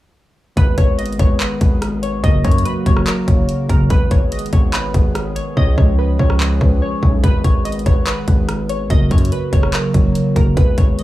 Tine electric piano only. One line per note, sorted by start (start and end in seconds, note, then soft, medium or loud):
0.56 1.01 D#3 loud
0.56 1.01 G#3 medium
0.56 1.01 B3 medium
0.56 1.01 G#4 loud
0.56 1.02 B4 loud
1.18 1.48 D#3 medium
1.18 1.49 G#3 medium
1.18 1.49 B3 medium
1.18 1.49 G#4 medium
1.18 1.49 B4 medium
1.59 2.04 D#3 medium
1.59 2.05 G#3 medium
1.59 2.05 B3 medium
1.59 2.05 G#4 medium
1.59 2.06 B4 medium
2.23 2.67 C#3 loud
2.23 2.68 F#3 loud
2.23 2.68 A#3 medium
2.23 2.68 F#4 loud
2.23 2.69 A#4 loud
2.84 3.15 C#3 medium
2.84 3.15 F#3 medium
2.84 3.15 A#3 medium
2.84 3.16 F#4 medium
2.84 3.16 G#4 medium
3.27 3.57 C#3 medium
3.27 3.57 F#3 medium
3.27 3.57 A#3 medium
3.27 3.58 F#4 medium
3.27 3.58 C#5 medium
3.69 3.84 C#3 medium
3.69 3.84 F#3 medium
3.69 3.84 A#3 medium
3.69 3.85 F#4 medium
3.69 3.85 A#4 medium
3.89 4.34 D#3 loud
3.89 4.34 G#3 loud
3.89 4.34 B3 medium
3.89 4.35 G#4 medium
3.89 4.35 B4 loud
4.52 4.82 D#3 medium
4.52 4.82 G#3 medium
4.52 4.82 B3 medium
4.52 4.83 G#4 medium
4.52 4.83 C#5 medium
4.94 5.38 D#3 medium
4.94 5.38 G#3 medium
4.94 5.39 B3 medium
4.94 5.39 G#4 medium
4.94 5.39 B4 medium
5.56 6.01 F3 loud
5.56 6.01 G#3 medium
5.56 6.01 C#4 medium
5.56 6.01 G#4 medium
5.56 6.02 C#5 loud
6.18 6.48 F3 medium
6.18 6.48 G#3 medium
6.18 6.49 C#4 medium
6.18 6.49 G#4 medium
6.18 6.49 C#5 medium
6.60 6.90 F3 medium
6.60 6.90 G#3 medium
6.60 6.90 C#4 medium
6.60 6.91 G#4 medium
6.60 6.91 B4 medium
7.01 7.17 F3 medium
7.01 7.17 G#3 medium
7.01 7.17 C#4 medium
7.01 7.18 G#4 medium
7.01 7.18 C#5 medium
7.23 7.67 D#3 medium
7.23 7.68 G#3 medium
7.23 7.68 B3 loud
7.23 7.68 G#4 loud
7.23 7.68 B4 loud
7.85 8.15 D#3 medium
7.85 8.15 G#3 medium
7.85 8.16 B3 medium
7.85 8.16 G#4 medium
7.85 8.16 B4 medium
8.26 8.71 D#3 medium
8.26 8.71 G#3 medium
8.26 8.72 B3 medium
8.26 8.72 G#4 medium
8.26 8.72 B4 medium
8.89 9.34 C#3 loud
8.89 9.34 F#3 loud
8.89 9.35 A#3 medium
8.89 9.35 F#4 loud
8.89 9.35 A#4 loud
9.51 9.81 C#3 medium
9.51 9.82 F#3 medium
9.51 9.82 A#3 medium
9.51 9.82 F#4 medium
9.51 9.82 G#4 medium
9.94 10.23 C#3 medium
9.94 10.24 F#3 medium
9.94 10.24 A#3 medium
9.94 10.24 F#4 medium
9.94 10.25 C#5 medium
10.35 10.50 C#3 medium
10.35 10.51 F#3 medium
10.35 10.51 A#3 medium
10.35 10.51 F#4 medium
10.35 10.51 A#4 medium
10.56 11.00 D#3 loud
10.56 11.01 G#3 loud
10.56 11.01 B3 medium
10.56 11.01 G#4 medium
10.56 11.02 B4 loud